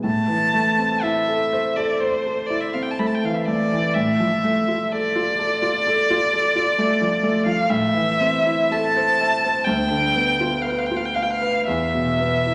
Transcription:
0.03 grand piano A2, violin A5
0.28 grand piano E3
0.54 grand piano A3
0.78 grand piano C4
1.03 grand piano E4, violin E5
1.28 grand piano A4
1.53 grand piano C5
1.76 grand piano A4, violin D5
2.00 violin C5, grand piano C5
2.26 grand piano A4
2.46 grand piano E4, violin D5
2.61 violin E5
2.73 grand piano C4, violin F5
2.83 violin G5
2.91 violin A5
2.99 grand piano A3, violin B5
3.07 violin A5
3.14 violin G5
3.23 grand piano E3, violin F5
3.35 violin E5
3.45 grand piano A3, violin D5
3.72 grand piano E3
3.94 grand piano A2, violin E5
4.20 grand piano F3
4.44 grand piano A3
4.68 grand piano F4
4.92 grand piano A4, violin D5
5.16 grand piano F4
5.39 grand piano A4
5.62 grand piano F4
5.87 grand piano A4
6.10 grand piano F4
6.33 grand piano A4
6.56 grand piano F4
6.78 grand piano A3
7.01 grand piano F3
7.23 grand piano A3
7.46 grand piano F3, violin F5
7.69 grand piano A2, violin E5
7.95 grand piano E3
8.20 grand piano C4
8.46 grand piano E4
8.71 grand piano A4, violin A5
8.96 grand piano C5
9.21 grand piano E5
9.44 grand piano C5
9.64 grand piano D2, violin G5
9.91 grand piano D3
10.15 grand piano B3
10.40 grand piano F4
10.62 grand piano B4, violin F5
10.70 violin G5
10.78 violin F5
10.86 violin G5
10.91 grand piano F4
10.97 violin F5
11.05 violin G5
11.15 violin F5, grand piano F5
11.22 violin G5
11.30 violin F5
11.41 grand piano B4
11.67 grand piano E2, violin E5
11.94 grand piano B2
12.20 grand piano B3
12.46 grand piano E4

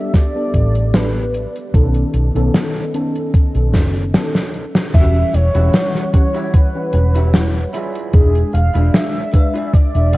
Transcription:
Already playing: fm electric piano G3 B3 D4 A4, ambient pad B3 G4 D5, soft synth lead E5
0.14 soft synth lead D5, kick, snare, closed hi-hat
0.34 fm electric piano G3 B3 D4 A4
0.54 fingered electric bass A1, kick, closed hi-hat
0.75 closed hi-hat
0.93 fm electric piano G3 B3 D4 A4, soft synth lead B4, snare, closed hi-hat
1.34 closed hi-hat
1.56 closed hi-hat
1.73 fingered electric bass B1, fm electric piano D#3 B3 C#4 A4, ambient pad C#4 A4 D#5, kick, closed hi-hat
1.94 closed hi-hat
2.14 fingered electric bass B1, closed hi-hat
2.34 fingered electric bass B1, fm electric piano D#3 B3 C#4 A4, closed hi-hat
2.54 snare, closed hi-hat
2.76 closed hi-hat
2.93 fm electric piano D#3 B3 C#4 A4, closed hi-hat
3.15 closed hi-hat
3.34 kick, closed hi-hat
3.54 fingered electric bass B1, fm electric piano D#3 B3 C#4 A4, closed hi-hat
3.73 fingered electric bass F#1, kick, snare, closed hi-hat
3.95 closed hi-hat
4.13 fm electric piano D#3 B3 C#4 A4, snare, closed hi-hat
4.35 snare, closed hi-hat
4.54 closed hi-hat
4.75 snare, closed hi-hat
4.93 fingered electric bass E1, fm electric piano E3 G3 C#4 F#4, ambient pad G3 C#5 F#5, soft synth lead E5, kick, closed hi-hat, crash
5.15 closed hi-hat
5.33 fingered electric bass E1, soft synth lead C#5, muted clean electric guitar stroke, closed hi-hat
5.54 fingered electric bass E1, fm electric piano E3 G3 C#4 F#5, clean electric guitar E4 F#4 G4 C#5, closed hi-hat
5.73 snare, closed hi-hat
5.95 snare
6.13 fm electric piano E3 G3 C#4 F#5, soft synth lead C#5, muted clean electric guitar stroke, kick, closed hi-hat
6.34 clean electric guitar E4 F#4 G4 C#5, closed hi-hat
6.54 soft synth lead B4, kick, closed hi-hat
6.74 fm electric piano E3 G3 C#4 F#5
6.93 fingered electric bass E1, muted clean electric guitar stroke, closed hi-hat
7.15 clean electric guitar E4 F#4 G4 C#5, closed hi-hat
7.33 fm electric piano E3 G3 C#4 F#4, snare, closed hi-hat
7.73 ambient pad G#3 D5, clean electric guitar E4 F4 G#4 D5, closed hi-hat
7.95 closed hi-hat
8.13 fingered electric bass E1, fm electric piano G#3 D4, soft synth lead G#4, kick, closed hi-hat
8.35 closed hi-hat
8.53 fingered electric bass E1, soft synth lead F5, muted clean electric guitar stroke, closed hi-hat
8.74 fingered electric bass E1, fm electric piano G#3 D4, clean electric guitar E4 F4 G#4 D5, closed hi-hat
8.94 soft synth lead E5, snare, closed hi-hat
9.33 fm electric piano G#3 D4, clean electric guitar B4, muted clean electric guitar stroke, kick, closed hi-hat
9.54 clean electric guitar E4 F4 G#4 D5, closed hi-hat
9.68 soft synth lead E5
9.73 soft synth lead D5, clean electric guitar D5, kick, closed hi-hat
9.95 fingered electric bass E1, fm electric piano G#3 D4, clean electric guitar E5, closed hi-hat
10.13 fingered electric bass B1, clean electric guitar F5, muted clean electric guitar stroke, closed hi-hat

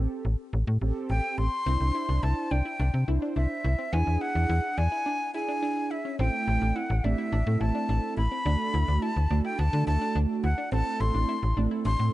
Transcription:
Already playing: analog polysynth C4 G4 A4
0.25 fm bass A1
0.53 fm bass A1
0.67 fm bass A2
0.81 fm bass A1, analog polysynth C4 G4 A4
1.10 fm bass A1, flute G5
1.38 fm bass A1, flute C6
1.66 fm bass C2, synth arpeggio sound C4, analog polysynth D4 E4 C5
1.81 fm bass C2
1.95 synth arpeggio sound E4
2.09 fm bass C2, synth arpeggio sound D4
2.23 fm bass C2, synth arpeggio sound E4, flute A5
2.51 fm bass C2, synth arpeggio sound D4, flute G5
2.65 synth arpeggio sound E4
2.80 fm bass C2, synth arpeggio sound D4
2.94 fm bass C3
3.08 fm bass C2, analog polysynth D4 E4 C5, synth arpeggio sound E4
3.22 synth arpeggio sound D4
3.36 fm bass C2, synth arpeggio sound D4, flute E5
3.64 fm bass C2, synth arpeggio sound E4
3.79 synth arpeggio sound C4
3.93 fm bass E2, synth arpeggio sound B3, analog polysynth D4 E4 G#4, flute G#5
4.07 fm bass E2
4.21 synth arpeggio sound E4, flute F#5
4.35 fm bass E2, synth arpeggio sound D4
4.49 fm bass E2, synth arpeggio sound E4
4.78 fm bass E2, synth arpeggio sound D4, flute G#5
4.92 synth arpeggio sound E4
5.06 synth arpeggio sound D4
5.34 analog polysynth D4 E4 G#4, synth arpeggio sound E4, flute G#5
5.48 synth arpeggio sound D4
5.63 synth arpeggio sound D4
5.91 synth arpeggio sound E4, flute E5
6.05 synth arpeggio sound C#4
6.19 fm bass A1, analog polysynth A3 C4 E4 A4, synth arpeggio sound C4, flute G5
6.48 fm bass A1, synth arpeggio sound E4
6.62 fm bass A1, synth arpeggio sound D4
6.76 synth arpeggio sound E4, flute F#5
6.90 fm bass A1
7.04 fm bass A1, analog polysynth A3 C4 E4 G4, synth arpeggio sound D4, flute E5
7.18 synth arpeggio sound E4
7.32 fm bass A1, synth arpeggio sound D4
7.47 fm bass A2, analog polysynth A3 C4 E4 A4
7.61 fm bass A1, synth arpeggio sound E4, flute A5
7.75 synth arpeggio sound D4
7.89 fm bass A1, synth arpeggio sound D4
8.17 fm bass A1, synth arpeggio sound E4, flute B5
8.32 synth arpeggio sound C4
8.46 fm bass D2, analog polysynth A3 D4 F#4 A4, synth arpeggio sound D4
8.74 fm bass D2, synth arpeggio sound E4
8.88 fm bass D2, synth arpeggio sound D4
9.02 synth arpeggio sound E4, flute A5
9.16 fm bass D2
9.31 fm bass D2, analog polysynth A3 D4 F#4 A4, synth arpeggio sound D4
9.45 synth arpeggio sound E4, flute G5
9.59 fm bass D2, synth arpeggio sound D4, flute A5
9.73 fm bass D3, analog polysynth A3 D4 F#4 A4
9.87 fm bass D2, synth arpeggio sound E4, flute A5
10.01 synth arpeggio sound D4
10.15 fm bass D2, synth arpeggio sound D4
10.44 fm bass D2, synth arpeggio sound E4, flute F#5
10.58 synth arpeggio sound D4
10.72 fm bass A1, analog polysynth A3 C4 E4 A4, synth arpeggio sound C4, flute A5
11.00 fm bass A1, synth arpeggio sound E4, flute C6
11.14 fm bass A1, synth arpeggio sound D4
11.29 synth arpeggio sound E4
11.43 fm bass A1
11.57 fm bass A1, analog polysynth A3 C4 E4 A4, synth arpeggio sound D4
11.71 synth arpeggio sound E4
11.85 fm bass A1, synth arpeggio sound D4, flute C6
11.99 fm bass A2, analog polysynth A3 C4 E4 A4

